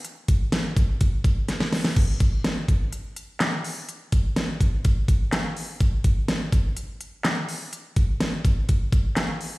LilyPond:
\new DrumStaff \with { instrumentName = "Drums" } \drummode { \time 4/4 \tempo 4 = 125 hh8 <hh bd>8 <hh sn>8 <hh bd>8 <hh bd>8 <hh bd>8 <hh sn>16 sn16 <hho sn>16 sn16 | <cymc bd>8 <hh bd>8 <hh sn>8 <hh bd>8 hh8 hh8 <hc hh sn>8 hho8 | hh8 <hh bd>8 <hh sn>8 <hh bd>8 <hh bd>8 <hh bd>8 <hc hh sn>8 hho8 | <hh bd>8 <hh bd>8 <hh sn>8 <hh bd>8 hh8 hh8 <hc hh sn>8 hho8 |
hh8 <hh bd>8 <hh sn>8 <hh bd>8 <hh bd>8 <hh bd>8 <hc hh sn>8 hho8 | }